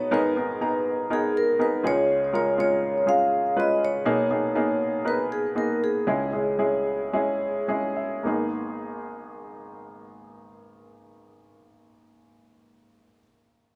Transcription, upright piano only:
Already playing: B1 B2 B3 D#4 F#4 B4
0.11 G#1 G#2 B3 D#4 G#4 A#4
0.36 B3 D#4 G#4 A#4
0.61 B3 D#4 G#4 A#5
1.10 B3 D#4 G#4 A#4
1.59 B3 D#4 G#4 A#4
1.83 C#2 C#3 G#3 C#4 F4 G#4
2.33 G#3 C#4 F4 A#4
2.58 G#3 C#4 F4 G#4
3.06 G#3 C#4 F4 G#4
3.56 G#3 C#4 F4 B4
4.05 B1 B2 A#3 B3 D#4 G#4
4.30 A#3 B3 D#4 G#4
4.55 A#3 B3 D#4 G#4
5.05 B3 D#4 A#4 B4
5.55 A#3 B3 D#4 G#4
6.07 C#2 C#3 G#3 C#4 E4 G#4
6.33 G#3 C#4 E4 G#4
6.59 G#3 C#4 E4 G#4
7.13 G#3 C#4 E4 G#4
7.68 G#3 C#4 E4 G#4 G#5
7.97 E5
8.23 G#1 A#3 B3 D#4 G#4

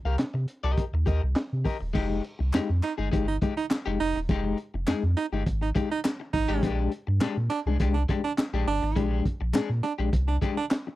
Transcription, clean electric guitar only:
0.05 G4 A#4 F5
0.19 muted clean electric guitar stroke
0.34 muted clean electric guitar stroke
0.64 G4 A#4 D#5
0.94 muted clean electric guitar stroke
1.06 G4 A#4 D#5
1.22 muted clean electric guitar stroke
1.35 muted clean electric guitar stroke
1.65 G4 A#4 D#5
1.81 muted clean electric guitar stroke
1.93 G#3 D#4 G4
2.39 muted clean electric guitar stroke
2.54 G#3 D#4 G4
2.83 muted clean electric guitar stroke
2.98 G#3 D#4 G#4
3.12 G#3 D#4 G4
3.42 G#3 D#4 G4
3.70 muted clean electric guitar stroke
3.86 G#3 D#4 G4
4.00 muted clean electric guitar stroke
4.16 muted clean electric guitar stroke
4.29 G#3 D#4 G4
4.74 muted clean electric guitar stroke
4.87 G#3 D#4 G#4
5.17 muted clean electric guitar stroke
5.33 G#3 D#4 G4
5.46 muted clean electric guitar stroke
5.62 muted clean electric guitar stroke
5.75 G#3 D#4 G4
6.04 muted clean electric guitar stroke
6.20 muted clean electric guitar stroke
6.49 G#3 D#4 G4
6.63 G#3 D4 G4
7.07 muted clean electric guitar stroke
7.21 G#3 D4 G4
7.51 muted clean electric guitar stroke
7.67 G#3 D4 G#4
7.80 G#3 D4 G4
7.95 muted clean electric guitar stroke
8.09 G#3 D4 G4
8.25 muted clean electric guitar stroke
8.38 muted clean electric guitar stroke
8.54 G#3 D4 G4
8.68 muted clean electric guitar stroke
8.83 muted clean electric guitar stroke
8.96 G#3 D4 G4
9.41 muted clean electric guitar stroke
9.53 G#3 D4 G#4
9.84 muted clean electric guitar stroke
9.98 G#3 D4 G4
10.13 muted clean electric guitar stroke
10.28 muted clean electric guitar stroke
10.42 G#3 D4 G4
10.57 muted clean electric guitar stroke
10.71 muted clean electric guitar stroke
10.87 muted clean electric guitar stroke

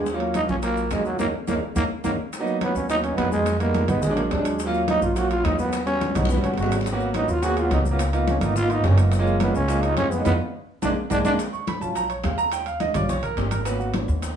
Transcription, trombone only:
0.36 D#4
0.49 C#4
0.63 A#3
0.92 G#3
1.06 F#3
1.20 A#3
1.48 A#3
1.77 A#3
2.05 A#3
2.63 B3
2.76 C#4
2.90 D#4
3.04 C#4
3.17 B3
3.31 G#3
3.60 A#3
3.88 B3
4.02 G#3
4.16 A#3
4.31 D4
4.89 D#4
5.03 F4
5.17 F#4
5.30 F4
5.44 D#4
5.59 B3
5.86 C#4
6.16 D#4
6.29 B3
6.44 C#4
6.59 F#4
7.16 D#4
7.30 F4
7.44 F#4
7.59 F4
7.73 D#4
8.29 C#4
8.43 D#4
8.57 F4
8.71 D#4
8.85 C#4
9.42 B3
9.56 C#4
9.83 D#4
9.98 C#4
10.12 B3
10.26 B3
10.83 D4
11.12 D4
11.26 D4

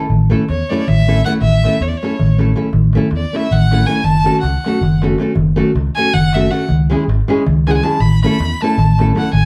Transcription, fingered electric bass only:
0.10 A1
0.49 E2
0.89 A1
1.41 A1
1.81 E2
2.21 A1
2.73 A1
3.12 E2
3.51 A1
4.04 F#1
4.43 C#2
4.81 F#1
5.36 F#1
5.75 C#2
6.15 F#1
6.70 C#2
7.08 G#1
7.48 C#2
8.00 A1
8.40 E2
8.78 A1
9.33 A1

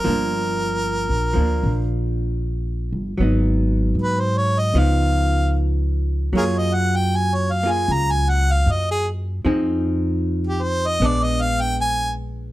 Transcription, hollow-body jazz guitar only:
0.04 F3 A#3 D4
1.33 F3 A#3
1.38 D4
3.18 F#3 B3
3.23 D#4
4.75 F3 B3 D#4
6.33 F#3 A#3
6.37 F4 G#4
7.63 A#3 F4 G#4
9.45 F3 C4 D#4 G#4
11.02 G#3 B3 D4

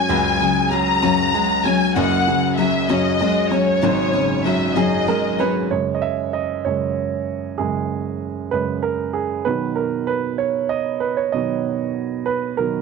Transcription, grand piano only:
Already playing: F#1 F#2 C#3 F#3 G#3 C#4
0.09 C#2
0.40 C#3
0.71 F#3
1.03 C#4
1.34 G#3
1.66 C#4
1.96 F#1 F#2
2.27 C#3
2.59 F#3
2.90 C#4
3.21 G#3
3.52 C#4
3.83 G#1 G#2
4.14 C#3
4.46 F#3
4.77 C#4 G#4
5.08 G#3 A#4
5.40 C#4 B4
5.71 F#2 C#3 G#3 C#5
5.95 D#5
6.02 E5
6.33 D#5
6.65 F#2 C#3 G#3 C#5
7.58 F#2 C#3 G#3 G#4
8.51 F#2 C#3 G#3 B4
8.83 A#4
9.13 G#4
9.45 B2 D#3 F#3 B4
9.76 A#4
10.07 B4
10.38 C#5
10.69 D#5
11.00 B4
11.17 C#5
11.32 B2 D#3 F#3 D#5
12.26 B4
12.57 B2 D#3 F#3 A#4

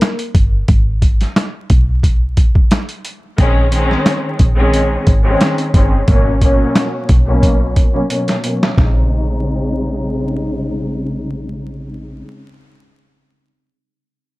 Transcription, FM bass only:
0.35 G1
0.69 G#1
1.70 B1
3.38 A#1
4.40 A#1
5.07 G#1
5.74 G1
6.08 G#1
7.09 B1
8.78 A#1

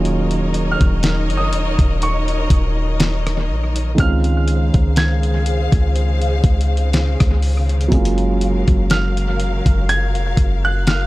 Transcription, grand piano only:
0.71 F6
1.37 D#6
2.03 C#6
4.00 F6
4.98 G#6
8.91 F6
9.89 G#6
10.65 F#6
10.88 F6

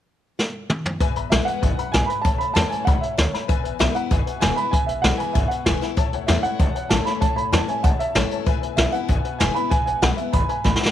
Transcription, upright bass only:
1.00 E1
1.17 A1
1.32 B1
1.47 muted upright bass stroke
1.63 G#1
1.79 muted upright bass stroke
1.94 B1
2.25 A1
2.40 D2
2.56 E2
2.72 muted upright bass stroke
2.87 C#2
3.02 muted upright bass stroke
3.18 D2
3.34 muted upright bass stroke
3.49 E1
3.65 A1
3.81 B1
4.11 G#1
4.27 muted upright bass stroke
4.42 E1
4.58 muted upright bass stroke
4.73 E1
4.89 A1
5.04 B1
5.20 muted upright bass stroke
5.35 G#1
5.51 muted upright bass stroke
5.66 E1
5.97 A1
6.13 D2
6.29 E2
6.44 muted upright bass stroke
6.60 C#2
6.75 muted upright bass stroke
6.91 A1
7.06 muted upright bass stroke
7.22 A1
7.37 D2
7.53 E2
7.69 muted upright bass stroke
7.84 C#2
8.00 muted upright bass stroke
8.15 A1
8.31 muted upright bass stroke
8.47 E1
8.62 A1
8.77 B1
8.94 muted upright bass stroke
9.09 G#1
9.40 E1
9.71 E1
9.87 A1
10.02 B1
10.34 G#1
10.49 muted upright bass stroke
10.65 A1
10.80 muted upright bass stroke

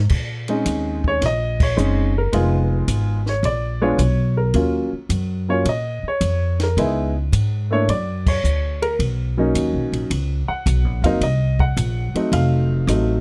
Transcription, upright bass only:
0.11 A#2
0.66 D#2
1.21 A#1
1.78 F#1
2.33 F1
2.88 G#1
3.43 A#1
3.98 B1
4.54 D#2
4.92 muted upright bass stroke
5.09 F#2
5.65 A#2
6.03 muted upright bass stroke
6.21 F2
6.77 C#2
7.32 G#2
7.88 F#2
8.44 D2
8.99 B1
9.55 D#2
9.73 B1
9.92 A#1
10.10 C#2
10.48 muted upright bass stroke
10.66 B1
10.84 A#1
11.02 F#1
11.21 C2
11.77 A#1
12.14 muted upright bass stroke
12.32 F1
12.87 A1

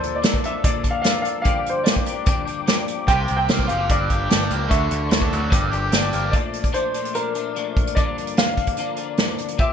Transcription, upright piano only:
Already playing: C5
0.15 D5
0.45 E5
0.64 D5
0.91 F5
1.02 F5
1.22 F5
1.42 F5
1.70 C5
1.83 D5
3.08 G5
3.37 G5
3.68 F5
3.90 D5
4.70 E5
6.31 D5
6.74 C5
7.15 A#4
7.95 D5
8.38 F5
9.60 E5

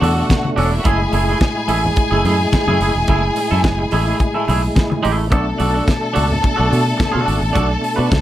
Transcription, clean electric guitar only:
0.01 D4 F#4 A4
0.15 D4 F#4 A4
0.28 muted clean electric guitar stroke
0.43 muted clean electric guitar stroke
0.56 D4 F#4 A4
0.72 muted clean electric guitar stroke
0.84 A3 E4 G#4
1.12 A3 E4 G#4
1.29 A3 E4 G#4
1.41 muted clean electric guitar stroke
1.56 muted clean electric guitar stroke
1.68 A3 E4 G#4
1.96 muted clean electric guitar stroke
2.11 A3 E4 G#4
2.24 A3 E4 G#4
2.40 muted clean electric guitar stroke
2.53 muted clean electric guitar stroke
2.68 A3 E4 G#4
2.81 A3 E4 G#4
2.96 muted clean electric guitar stroke
3.09 A3 E4 G#4
3.26 muted clean electric guitar stroke
3.37 muted clean electric guitar stroke
3.51 A3 E4 A4
3.64 muted clean electric guitar stroke
3.79 muted clean electric guitar stroke
3.92 A3 E4 G#4
4.07 A3 E4 G#4
4.21 muted clean electric guitar stroke
4.34 A3 E4 A4
4.48 A3 E4 G#4
4.63 muted clean electric guitar stroke
4.76 muted clean electric guitar stroke
4.90 muted clean electric guitar stroke
5.03 A3 E4 G#4
5.18 muted clean electric guitar stroke
5.31 D4 F#4 A4
5.58 D4 F#4 A4
5.73 D4 F#4 A4
5.86 muted clean electric guitar stroke
6.01 muted clean electric guitar stroke
6.13 D4 F#4 A4
6.28 muted clean electric guitar stroke
6.42 muted clean electric guitar stroke
6.56 D4 F#4 A4
6.70 D4 F#4 A4
6.84 muted clean electric guitar stroke
6.97 muted clean electric guitar stroke
7.12 D4 F#4 A4
7.24 D4 F#4 A4
7.40 muted clean electric guitar stroke
7.53 D4 F#4 A4
7.68 muted clean electric guitar stroke
7.81 muted clean electric guitar stroke
7.96 D4 F#4 B4
8.10 muted clean electric guitar stroke

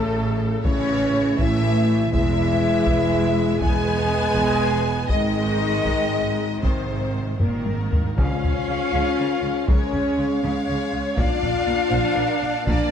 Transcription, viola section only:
Already playing: C#3
0.64 E3
1.39 A3
2.12 G#3
3.61 B3
5.10 G#3
6.62 D#3
7.40 D#3
8.18 C#4
9.68 G#3
10.44 G#3
11.19 D4
12.66 A#3

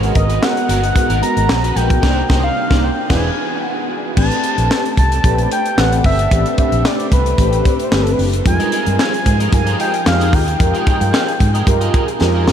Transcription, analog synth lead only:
0.16 D#5
0.43 F#5
0.83 F#5
1.22 A#5
1.76 G5
2.44 F5
2.83 G5
3.10 G#5
3.66 F#5
4.18 A5
4.99 A5
5.52 G5
5.79 F#5
6.06 E5
6.59 E5
6.86 D5
7.13 B4
7.84 C5
7.93 B4
8.02 A4
8.11 B4
8.47 G#5
9.00 G#5
9.27 G#5
9.54 G#5
9.81 G5
10.07 F5
10.34 G5

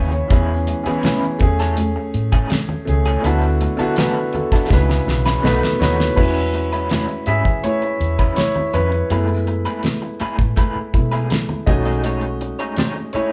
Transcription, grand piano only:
Already playing: C#3 C#4 E4 B4 C#5 D#5 E5 F#5
0.12 C#5
0.28 E3 B3 C#4
0.32 G#4
0.83 E3 B3 C#4 G#4
1.39 A3 C#4 G#4
2.85 A3 C#4 G#4
3.22 D3 B3 E4 F#4
3.77 D3 B3 E4 F#4
3.97 G#4 B4
4.34 F#4 A4
4.53 D4 F#4
4.69 C#3 G#3 D#4
4.73 B4
4.78 E4
5.42 B2 A3 D#4 B4
5.79 B2 A3 D#4 E4 B4 C#5
6.16 G#3 C#4 E4 F#4 B4
7.27 G#4 E5
7.63 E4 C#5
8.37 E4 C#5
8.74 E4 B4
9.11 G#3 A3 B3 E4
10.94 G#3 A3 B3 E4
11.66 G#3 A3 C#4 D#4 F#4 D#5
13.13 E4 C#5

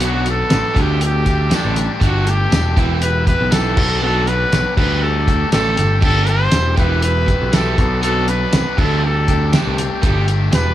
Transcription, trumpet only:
0.05 F#4
0.30 A4
0.81 G4
1.05 G4
1.55 D4
2.05 F#4
2.30 G4
3.02 B4
3.28 B4
3.52 A4
4.02 A4
4.28 B4
4.76 B4
5.03 A4
5.52 A4
6.04 A4
6.29 C5
6.78 B4
7.03 B4
7.54 A4
8.03 A4
8.29 B4
8.79 A4
9.06 A4
9.57 G4
10.06 G4
10.55 B4

